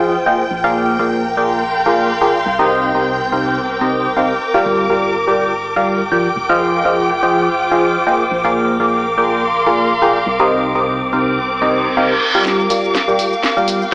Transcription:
Already playing: F1 F3 F4 G#4 C5 D#5 F5 G5
0.26 A#3 F4 G#4 C5 D#5 G5
0.50 A#1 A#4
0.64 A#3 F4 G#4 A#4 D5 F5
0.99 A#3 F4 G#4 A#4 D5 F5
1.33 A#3 F4 G#4 A#4 D5 F5 G5
1.39 C6
1.86 A#3 F4 G#4 A#4 D5 F5
2.21 F4 G#4 A#4 D5 G5
2.46 C2 C4
2.59 C3 D#4 G4 A#4 C5 D#5
2.94 C3 D#4 G4 A#4 C5 D#5
3.07 A#4
3.32 C3 D#4 G4 A#4 C5 F5
3.45 D6
3.81 C3 D#4 G4 A#4 C5 D#5
4.17 C3 D#4 G4 A#4 C5 F5
4.54 G3 F4 G4 A#4 D5 F5
4.65 G1 D6
4.90 G3 F4 G4 A#4 D5 F5
5.27 G3 F4 G4 A#4 D5 G5
5.42 G5
5.76 G3 F4 G4 A#4 D5 F5
6.12 F3 F4 G4 A#4 D5 G5
6.36 F1 F4
6.49 F3 F4 G#4 C5 D#5 F5
6.85 F3 F4 G#4 C5 D#5 F5
7.23 F3 F4 G#4 C5 D#5 G5
7.71 F3 F4 G#4 C5 D#5 F5
8.07 A#3 F4 G#4 C5 D#5 G5
8.31 A#1 A#4
8.44 A#3 F4 G#4 A#4 D5 F5
8.80 A#3 F4 G#4 A#4 D5 F5
8.93 F5
9.18 A#3 F4 G#4 A#4 D5 G5 C6
9.66 A#3 F4 G#4 A#4 D5 F5
10.02 F4 G#4 A#4 D5 G5
10.26 C2 C4
10.40 C3 D#4 G4 A#4 C5 D#5
10.75 C3 D#4 G4 A#4 C5 D#5
11.03 A#4
11.13 C3 D#4 G4 A#4 C5 F5
11.25 D6
11.48 reverse cymbal
11.62 C3 D#4 G4 A#4 C5 D#5
11.97 C3 D#4 G4 A#4 C5 F5
12.35 G3 F4 G4 A#4 D5 F5
12.46 F5, snare, riser, cabasa
12.60 cabasa
12.70 G3 F4 G4 A#4 D5 F5, open hi-hat, cabasa
12.84 cabasa
12.95 snare, cabasa
13.08 G3 F4 G4 A#4 D5 G5, cabasa
13.19 G5, open hi-hat, cabasa
13.33 cabasa
13.43 snare, cabasa
13.57 G3 F4 G4 A#4 D5 F5, cabasa
13.68 open hi-hat, cabasa
13.82 cabasa

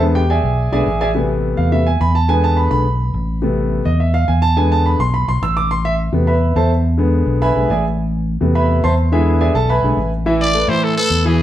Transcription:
Already playing: E2
0.01 D3 G#3 B3
0.15 G4 G5
0.30 G#4 D5 E5 G#5
0.43 B1
0.72 B1 D3 G#3 B3 G#4 D5 E5 G#5
0.86 A1
1.01 G#4 D5 E5 G#5
1.15 C3 A3 B3
1.57 E2 F5
1.72 C3 A3 B3 E5
1.87 G#5
2.00 E2 B5
2.15 A5
2.28 D3 G#3 B3 G#5
2.44 A5
2.57 B5
2.70 B1 D3 G#3 B3 B5
3.14 A1
3.42 C3 A3 B3
3.85 E2 D#5
4.00 E5
4.14 F5
4.28 E2 G#5
4.42 A5
4.57 D3 G#3 B3 G#5
4.72 A5
4.86 B5
4.99 B1 C6
5.14 B5
5.28 B1 C6
5.42 A1 E6
5.57 D6
5.71 C6
5.85 E5
6.12 E2 C3 A3 B3
6.27 B4 E5 B5
6.56 E2 A4 C5 E5 A5
6.98 D3 G#3 B3
7.26 B1
7.42 B4 E5 G#5 B5
7.55 B1 D3 G#3 B3
7.70 A1 G#4 D5 E5 G#5
8.41 E2 C3 A3 B3
8.55 B4 E5 B5
8.84 E2 C5 E5 A5 C6
9.12 D3 G#3 B3 E4 G#4 B4 E5
9.41 G#4 D5 E5 G#5
9.54 B1 A4 A5
9.70 B4 E5 G#5 B5
9.83 B1 D3 G#3 B3
9.97 A1
10.26 E3 E4 E5
10.41 D5
10.54 A3 A4 B4
10.68 A2 E3 E4 C5 E5
10.84 A4
10.96 A3 A4 B4
11.10 E2
11.25 E3 E4 G#4 E5

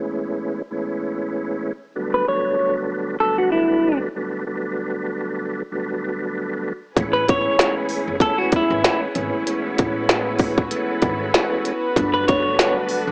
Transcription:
Already playing: A2 E3 G#3 B3 C#4
0.71 A2 E3 G#3 B3 C#4
1.95 G2 D3 F#3 A3 B3
2.14 B4
2.28 G2 D3 F#3 A3 B3 C#5
2.58 G2 D3 F#3 A3 B3
3.20 G2 D3 F#3 A3 B3 A4
3.38 F#4
3.52 E4
4.15 G2 D3 F#3 A3 B3
4.46 G2 D3 F#3 A3 B3
5.71 G2 D3 F#3 A3 B3
6.95 A1 A2 E3 G#3 B3 C#4 E4 G#4 B4, kick, closed hi-hat
7.13 B4
7.27 A2 E3 G#3 B3 C#4 C#5, kick, closed hi-hat
7.58 A2 E3 G#3 B3 C#4, snare, closed hi-hat
7.89 open hi-hat
8.07 F#1
8.20 A2 E3 G#3 B3 C#4 A4, kick, closed hi-hat
8.38 F#4
8.52 kick, closed hi-hat
8.56 E4
8.70 G#1
8.84 snare, closed hi-hat
9.14 G#1 A2 E3 G#3 B3 C#4, closed hi-hat
9.45 A2 E3 G#3 B3 C#4 F#4, closed hi-hat
9.78 A1, kick, closed hi-hat
10.09 snare, closed hi-hat
10.39 kick, open hi-hat
10.58 kick
10.71 E3 G#3 A3 B3 C#4, closed hi-hat
11.02 G#1, kick, closed hi-hat
11.34 snare, closed hi-hat
11.65 closed hi-hat
11.95 G1 G2 D3 F#3 A3 B3 D4 A4, kick, closed hi-hat
12.14 B4
12.28 G2 D3 F#3 A3 B3 C#5, kick, closed hi-hat
12.58 G2 D3 F#3 A3 B3, snare, closed hi-hat
12.89 open hi-hat
13.07 E1

